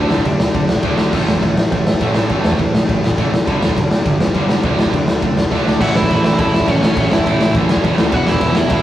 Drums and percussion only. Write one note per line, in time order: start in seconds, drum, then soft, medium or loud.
0.10 snare loud
0.18 kick medium
0.25 kick medium
0.25 ride medium
0.40 snare loud
0.54 kick loud
0.54 ride medium
0.69 snare loud
0.76 kick medium
0.83 kick loud
0.83 ride medium
0.98 snare loud
1.13 kick loud
1.13 crash medium
1.28 snare loud
1.35 kick medium
1.42 kick medium
1.42 ride medium
1.57 snare loud
1.72 kick loud
1.72 ride medium
1.87 snare loud
1.94 kick medium
2.01 kick loud
2.01 ride medium
2.15 snare loud
2.29 kick loud
2.29 ride medium
2.44 snare loud
2.52 kick medium
2.59 kick medium
2.59 ride medium
2.75 snare loud
2.89 kick loud
2.89 ride medium
3.04 snare loud
3.11 kick medium
3.18 kick loud
3.18 ride medium
3.34 snare loud
3.47 kick loud
3.47 ride medium
3.63 snare loud
3.69 kick medium
3.77 kick medium
3.77 ride medium
3.91 snare loud
4.05 kick loud
4.05 ride medium
4.21 snare loud
4.27 kick medium
4.34 kick medium
4.34 ride medium
4.49 snare loud
4.63 kick loud
4.63 ride medium
4.79 snare loud
4.86 kick medium
4.93 kick medium
4.93 ride medium
5.08 snare loud
5.22 kick loud
5.22 ride medium
5.37 snare loud
5.44 kick medium
5.52 kick medium
5.52 snare medium
5.67 snare medium
5.81 kick loud
5.81 crash loud
5.95 snare loud
6.02 kick medium
6.10 kick loud
6.10 ride medium
6.24 snare loud
6.39 kick loud
6.39 ride medium
6.54 snare loud
6.61 kick medium
6.68 kick loud
6.68 ride medium
6.83 snare loud
6.97 kick loud
6.97 ride medium
7.12 snare loud
7.19 kick medium
7.26 kick loud
7.26 ride medium
7.41 snare loud
7.55 kick loud
7.55 ride medium
7.69 snare loud
7.77 kick medium
7.84 kick loud
7.84 ride medium
7.98 snare loud
8.12 kick loud
8.12 ride medium
8.27 snare loud
8.34 kick loud
8.41 kick loud
8.41 ride medium
8.55 snare loud
8.70 kick loud
8.70 ride medium